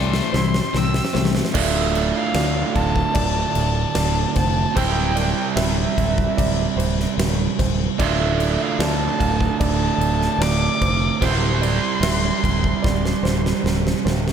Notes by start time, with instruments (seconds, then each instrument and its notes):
Already playing: fingered electric bass C2, distorted electric guitar A2 E3 A3, clean electric guitar A2 C4 E4 A4, felt piano D5, violin C6
0.13 snare
0.32 fingered electric bass C2, distorted electric guitar A2 E3, clean electric guitar E4, felt piano C5, snare
0.54 snare
0.73 fingered electric bass C2, distorted electric guitar A2 E3, clean electric guitar C4, snare
0.77 violin E6
0.94 snare
1.05 snare
1.13 fingered electric bass C2, distorted electric guitar A2 E3, clean electric guitar A3, felt piano C5, snare
1.25 snare
1.35 snare
1.45 snare
1.53 fingered electric bass D1, overdriven electric guitar D2 A2 D3 A3 F4, felt piano D5, violin E5, kick, crash
1.95 crash
2.16 violin F5
2.35 fingered electric bass D2, felt piano D5, snare, crash
2.74 fingered electric bass D1, felt piano F5, violin A5, kick, crash
2.96 kick
3.14 fingered electric bass D1, felt piano D5, kick, crash
3.55 fingered electric bass D1, crash
3.95 fingered electric bass D1, felt piano D5, snare, crash
4.35 fingered electric bass F1, felt piano C5, violin A5, kick, snare, crash
4.75 fingered electric bass D1, overdriven electric guitar C3 G3 C4 E4 G4 C5, felt piano C5, violin G5, kick, crash
5.16 felt piano D5, crash
5.56 fingered electric bass D1, felt piano E5, violin E5, snare, crash
5.98 fingered electric bass D1, kick, crash
6.18 kick
6.37 fingered electric bass D1, felt piano D5, kick, crash
6.77 fingered electric bass D1, felt piano C5, crash
7.00 snare
7.18 fingered electric bass D1, snare, crash
7.59 fingered electric bass D1, felt piano C5, kick, snare, crash
7.98 fingered electric bass D1, overdriven electric guitar D2 A2 D3 A3 F4, felt piano D5, violin E5, kick, crash
8.40 crash
8.62 violin F5
8.79 fingered electric bass D2, felt piano D5, violin A5, snare, crash
9.19 fingered electric bass D1, felt piano F5, kick, crash
9.41 kick
9.60 fingered electric bass D1, felt piano D5, violin A5, kick, crash
9.98 fingered electric bass D1, crash
10.22 snare
10.38 fingered electric bass D1, felt piano D5, snare, crash
10.43 violin D6
10.81 fingered electric bass F1, felt piano C5, kick, crash
11.21 fingered electric bass D1, overdriven electric guitar C3 G3 C4 E4 G4 C5, felt piano C5, kick, crash
11.25 violin C6
11.62 felt piano D5, crash
12.01 fingered electric bass D1, felt piano E5, snare, crash
12.44 fingered electric bass D1, kick, crash
12.64 kick
12.82 fingered electric bass D1, felt piano D5, kick, snare
13.05 snare
13.23 fingered electric bass D1, felt piano C5, snare
13.46 snare
13.64 fingered electric bass D1, snare
13.87 snare
14.05 fingered electric bass D1, felt piano C5, snare
14.28 snare